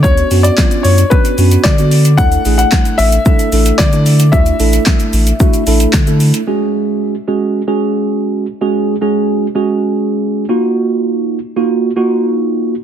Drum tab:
HH |-xox-xox-xox-xox|-xox-xox-xox-xox|-xox-xox-xox-xox|----------------|
SH |xxxxxxxxxxxxxxxx|xxxxxxxxxxxxxxxx|xxxxxxxxxxxxxxxx|----------------|
CP |----x-------x---|----x-------x---|----x-------x---|----------------|
SD |----o-------o---|----o-------o---|----o-------o---|----------------|
BD |o---o---o---o---|o---o---o---o---|o---o---o---o---|----------------|

HH |----------------|----------------|
SH |----------------|----------------|
CP |----------------|----------------|
SD |----------------|----------------|
BD |----------------|----------------|